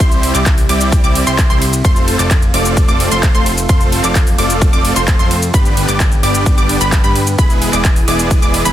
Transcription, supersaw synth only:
0.00 G3 C4 E4 G4 C5
0.35 G3 C4 E4 G4 D5
0.69 G3 C4 E4 G4 D5
1.04 G3 C4 E4 G4 D5
1.27 G3 C4 E4 G4 C5
1.50 G3 C4 E4 G4 C5
1.85 A3 C4 F4 A4 C5
2.19 A3 C4 F4 A4 D5
2.54 A3 C4 F4 A4 D5
2.88 A3 C4 F4 A4 D5
3.12 A3 C4 F4 A4 C5
3.35 A3 C4 F4 A4 C5
3.69 A3 C4 F4 A4 C5
4.04 A3 C4 F4 A4 D5
4.38 A3 C4 F4 A4 D5
4.73 A3 C4 F4 A4 D5
4.96 A3 C4 F4 A4 C5
5.19 A3 C4 F4 A4 C5
5.54 G3 B3 D4 G4 B4
5.88 G3 B3 D4 G4 D5
6.23 G3 B3 D4 G4 D5
6.58 G3 B3 D4 G4 D5
6.81 G3 B3 D4 G4 B4
7.04 G3 B3 D4 G4 B4
7.39 G#3 B3 E4 G#4 B4
7.73 G#3 B3 E4 G#4 D5
8.08 G#3 B3 E4 G#4 D5
8.42 G#3 B3 E4 G#4 D5
8.65 G#3 B3 E4 G#4 B4

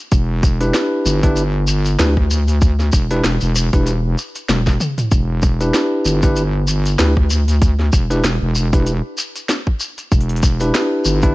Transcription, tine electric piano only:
0.61 D4 E4 G4 B4
1.23 D4 E4 G4 B4
1.99 D4 E4 G4 B4
3.11 D4 E4 G4 B4
3.73 D4 E4 G4 B4
5.61 D4 E4 G4 B4
6.23 D4 E4 G4 B4
6.99 D4 E4 G4 B4
8.10 D4 E4 G4 B4
8.73 D4 E4 G4 B4
10.61 D4 E4 G4 B4
11.23 D4 E4 G4 B4

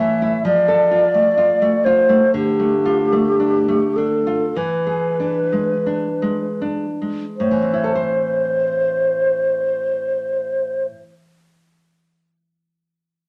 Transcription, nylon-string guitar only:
Already playing: A2 A3
0.00 E3
0.22 E4
0.45 F3
0.68 A4
0.91 F4
1.14 A3
1.38 F4
1.62 A3
1.86 F4
2.09 A3
2.34 D3
2.60 A3
2.85 F4
3.12 A3
3.40 D4
3.68 A3
3.98 D4
4.27 F4
4.56 E3
4.87 G#4
5.20 D4
5.52 G#3
5.86 D4
6.22 G#3
6.62 D4
7.02 G#3
7.40 A2
7.51 E3
7.62 C4
7.73 E4
7.84 A4
7.95 C5

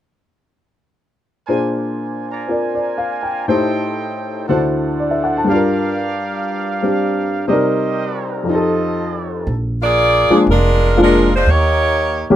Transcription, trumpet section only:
1.47 A#4 C5 D5 G#5
2.31 D5 F5 A#5
3.48 A4 C5 D#5 G5
4.48 A4 C5 D5 F#5
5.48 G4 A#4 D5 F5
7.47 G4 A#4 C5 D#5
7.98 G5
8.23 A#5
8.47 F4 A4 C5 D#5

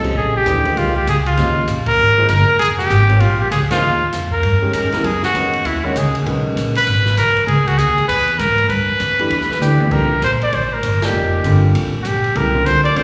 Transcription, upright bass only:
Already playing: C2
0.15 A#1
0.46 D#2
0.77 C2
1.07 C#2
1.38 D#2
1.68 A#1
1.86 muted upright bass stroke
1.99 G#1
2.29 G1
2.48 muted upright bass stroke
2.60 F1
2.90 G#1
3.20 A#1
3.51 C#2
3.71 muted upright bass stroke
3.82 D#2
4.12 F2
4.43 G2
4.73 G#2
4.93 muted upright bass stroke
5.04 F#2
5.34 E2
5.65 D#2
5.96 C#2
6.26 B1
6.56 A#1
6.87 G#1
7.17 B1
7.37 muted upright bass stroke
7.47 C#2
7.78 D#2
8.09 E2
8.39 G#2
8.69 G2
8.88 muted upright bass stroke
9.00 F2
9.30 E2
9.49 muted upright bass stroke
9.60 D2
9.91 C2
10.22 A#1
10.53 A1
10.83 G1
11.13 F1
11.44 G1
11.75 A1
11.94 muted upright bass stroke
12.05 A#1
12.35 C2
12.66 D2
12.96 F2

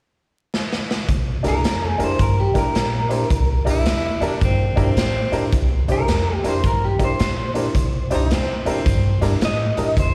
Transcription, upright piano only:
1.43 D4 E4 G4 A#4
1.98 D4 E4 G4 A#4
2.54 D4 E4 G4 A#4
3.09 D4 E4 G4 C5
3.65 D4 E4 G4 A#4
4.21 D4 E4 G4 A#4
4.76 D4 E4 G4 A#4
5.32 D4 E4 G4 A#4
5.88 D4 E4 G4 C5
6.44 D4 E4 G4 A#4
6.99 D4 E4 G4 A#4
7.54 D4 E4 G4 A#4
8.10 D4 E4 G4 C5
8.66 D4 E4 G4 A#4
9.21 D4 E4 G4 A#4
9.77 D4 E4 G4 A#4

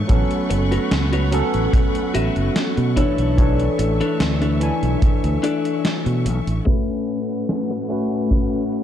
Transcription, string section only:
Already playing: A3 C#6
0.09 F#5 B5
2.97 E5
6.66 A2 A3 C#4 B4 F#5

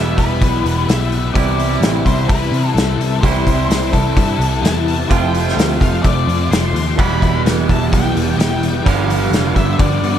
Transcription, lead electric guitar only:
Already playing: E5
0.17 B4
0.88 E5
1.34 D5
2.07 C5
2.28 B4
2.74 A4
3.21 C5
3.69 C5
3.93 A4
4.62 A5
5.10 G5
5.81 F5
6.03 D5
6.51 C6
6.99 B5
7.70 A5
7.93 G5
8.40 G5
8.87 F5
9.56 E5
9.80 D5

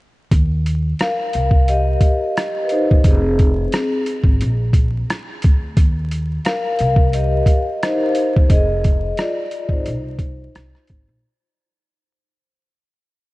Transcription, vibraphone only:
1.01 A#4 F5
1.69 G4 D#5
2.65 B4
2.72 D#4 C5
3.06 C4 G#4
6.45 A#4 F5
7.14 G4 D#5
7.83 D#4 C5
8.51 G#4 D#5
9.20 F4 D5
9.72 D#4 C5

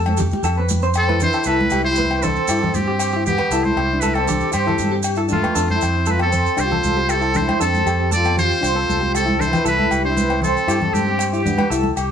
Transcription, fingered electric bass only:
Already playing: F2
0.43 F2
1.46 C2
1.72 C2
2.48 G2
2.74 G2
3.51 C2
3.77 C2
4.54 G2
4.79 G2
5.56 F2
5.82 F2
6.58 C2
6.84 C2
7.61 F2
7.86 F2
8.63 C2
8.90 C2
9.65 C2
9.91 C2
10.68 G2
10.94 G2
11.70 C2
11.97 C2

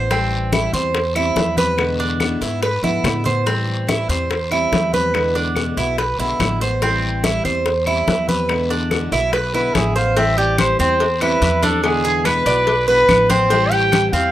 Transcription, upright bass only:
Already playing: A1
0.73 E2
1.36 E2
2.41 G#2
2.83 G#2
3.04 A2
4.09 E2
4.72 E2
5.77 B1
6.19 B1
6.40 A1
7.45 E2
8.08 E2
9.12 B1
9.75 A1
10.80 E2
11.42 E2
12.46 B1
13.09 A1
14.13 E2

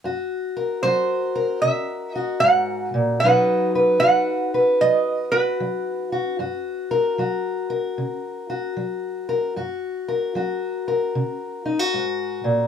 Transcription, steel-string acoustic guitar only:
0.04 F#2 F#4
0.57 A#4
0.84 F#3 F#4
1.36 A#4
1.64 C#3
2.16 F#4
2.43 G#2
2.94 A#2
3.23 B2 F#3 D#4 F#4 B4
3.75 B4
4.02 F#3 F#4
4.54 B4
4.82 F#3
5.33 F#4
5.60 F#3
6.12 F#4
6.39 F#2 F#4
6.91 A#4
7.18 F#3 F#4
7.70 A#4
7.98 C#3
8.50 F#4
8.77 F#3
9.29 A#4
9.56 F#2 F#4
10.08 A#4
10.35 F#3 F#4
10.88 A#4
11.15 C#3
11.66 D#4
11.79 F#4
11.94 G#2
12.44 A#2

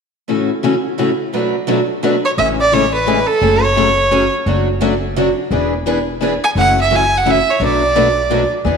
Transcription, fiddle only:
2.25 C#5
2.38 E5
2.61 D5
2.74 C#5
2.94 B4
3.27 A4
3.63 C#5
6.44 G#5
6.58 F#5
6.81 E5
6.96 G#5
7.17 F#5
7.31 E5
7.50 C#5
7.66 D5

